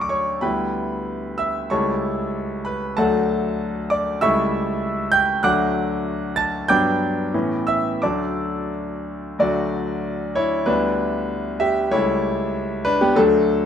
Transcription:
Already playing: D2 F#3 A3 D4 D5 A5 C#6 E6
0.00 D6
0.09 C#5 C#6
0.41 D2 G3 B3 E4 B4 G5 B5
1.38 E5 E6
1.70 C#2 G3 A3 E4 C#5 A5 C#6
2.65 B4 B5
2.97 D2 F#3 A3 D4 A4 F#5 A5
3.90 D5 D6
4.21 C#2 G3 A3 E4 E5 C#6 E6
5.12 G5 G6
5.43 D2 F#3 A3 D4 F#5 D6 F#6
6.36 A5 A6
6.68 G2 F#3 B3 D4 G5 D6 G6
7.34 A2 E3 B3 C#4
7.67 E5 E6
8.02 D2 F#3 A3 D4 D5 A5 D6
9.39 D2 F#3 A3 D4 F#4 D5
10.35 E4 C#5
10.66 D2 G3 B3 D4 E4 B4
11.60 G4 E5
11.91 C#2 G3 A3 E4 C#5
12.85 D4 B4
13.01 B3 G4
13.15 D2 F#3 A3 D4 A4

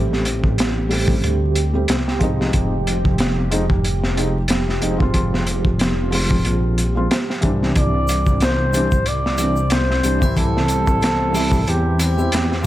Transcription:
Already playing: A1 G3 A3 C4 G4
0.13 snare
0.25 closed hi-hat
0.44 kick
0.58 snare, closed hi-hat
0.89 G3 A3 C4 G4, open hi-hat
1.08 kick
1.24 D2, closed hi-hat
1.55 closed hi-hat
1.73 G3 A3 C4 G4
1.88 C2, snare, closed hi-hat
2.08 snare
2.19 F3 G#3 C4, kick, closed hi-hat
2.23 D#4
2.41 snare
2.53 F1, kick, closed hi-hat
2.87 closed hi-hat
3.05 kick
3.18 snare, closed hi-hat
3.50 F3 G#3 C4 D#4, closed hi-hat
3.70 kick
3.84 closed hi-hat
4.04 snare
4.16 F3 G#3 C4 D#4, closed hi-hat
4.48 snare, closed hi-hat
4.69 snare
4.81 F1 F3 G#3 C4 D#4, closed hi-hat
4.98 F3 G#3 C4, kick
5.02 F4
5.14 F1, kick, closed hi-hat
5.34 snare
5.47 closed hi-hat
5.65 kick
5.79 snare, closed hi-hat
6.11 F3 G#3 C4 F4, open hi-hat
6.31 kick
6.45 A#1, closed hi-hat
6.78 closed hi-hat
6.95 F3 G#3 C4 F4
7.11 snare, closed hi-hat
7.30 snare
7.41 C2 E3 G3 C4 D4, kick, closed hi-hat
7.63 snare
7.75 C2 C4 C5 D5, kick, closed hi-hat, shaker
8.08 closed hi-hat, shaker
8.26 kick, shaker
8.40 C5, snare, closed hi-hat, shaker
8.73 E3 G3 C4 D4, closed hi-hat, shaker
8.91 kick, shaker
9.06 D5, closed hi-hat, shaker
9.26 snare
9.38 E3 G3 C4 D4, closed hi-hat, shaker
9.56 shaker
9.70 C5, snare, closed hi-hat, shaker
9.91 snare
10.03 C2 E3 G3 C4 D4, closed hi-hat, shaker
10.20 E3 G3 C4, kick, triangle, shaker
10.25 E4
10.36 C2 A4, kick, closed hi-hat, shaker
10.57 snare
10.68 closed hi-hat, shaker
10.87 kick, shaker
11.02 snare, closed hi-hat, shaker
11.33 E3 G3 C4, open hi-hat, shaker
11.37 E4
11.52 kick, shaker
11.67 E2 G4, closed hi-hat, shaker
11.99 G4, closed hi-hat, triangle, shaker
12.17 E3 G3 C4 E4, shaker
12.32 E2, snare, closed hi-hat, shaker
12.52 snare
12.62 F3

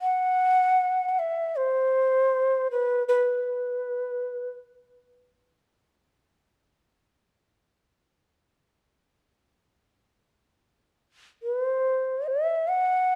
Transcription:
0.01 F#5
1.08 F#5
1.19 E5
1.56 C5
2.71 B4
3.08 B4
11.43 B4
11.62 C5
12.28 E5
12.68 F#5

